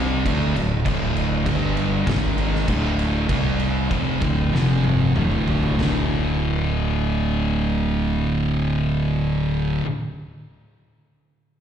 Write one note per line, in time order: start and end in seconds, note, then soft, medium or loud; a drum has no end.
0.00 0.21 C2 medium
0.00 0.24 C3 medium
0.00 0.24 G3 loud
0.00 0.25 C4 loud
0.24 0.53 D2 medium
0.24 0.54 D3 medium
0.24 0.54 A3 loud
0.24 0.54 D4 loud
0.24 kick loud
0.24 crash medium
0.56 0.84 D1 medium
0.56 0.79 D2 medium
0.56 0.80 A2 medium
0.56 crash medium
0.85 1.42 D1 medium
0.85 1.45 D2 medium
0.85 1.45 A2 medium
0.85 1.45 D3 medium
0.85 kick loud
0.85 crash medium
1.16 crash medium
1.46 2.03 G1 medium
1.46 2.06 G2 loud
1.46 2.06 D3 loud
1.46 2.06 G3 loud
1.46 kick medium
1.46 crash medium
1.77 crash medium
2.07 2.64 G#1 medium
2.07 2.67 G#2 medium
2.07 2.67 D#3 medium
2.07 2.67 G#3 medium
2.07 kick loud
2.07 snare loud
2.07 crash medium
2.38 crash medium
2.55 snare soft
2.68 3.25 D1 medium
2.68 3.28 D2 medium
2.68 3.28 A2 loud
2.68 3.29 D3 medium
2.68 kick loud
2.68 crash medium
2.99 crash medium
3.29 3.87 C2 loud
3.29 3.90 C3 medium
3.29 3.90 G3 medium
3.29 3.90 C4 medium
3.29 kick loud
3.29 crash medium
3.60 crash soft
3.91 4.20 F1 medium
3.91 4.21 F2 medium
3.91 4.21 C3 medium
3.91 4.21 F3 medium
3.91 kick medium
3.91 crash medium
4.21 4.51 D1 medium
4.21 4.52 D2 medium
4.21 4.52 A2 medium
4.21 4.53 D3 loud
4.21 kick loud
4.21 crash medium
4.53 5.12 F1 medium
4.53 5.15 F2 medium
4.53 5.15 C3 medium
4.53 5.15 F3 medium
4.53 snare medium
4.84 high tom medium
5.16 5.75 D1 medium
5.16 5.76 D2 medium
5.16 5.78 A2 medium
5.16 5.78 D3 loud
5.16 mid tom medium
5.32 mid tom medium
5.48 floor tom medium
5.63 floor tom medium
5.77 9.79 D1 medium
5.77 9.83 D2 medium
5.77 9.84 A2 medium
5.77 snare loud
5.77 floor tom loud
5.82 9.85 D3 medium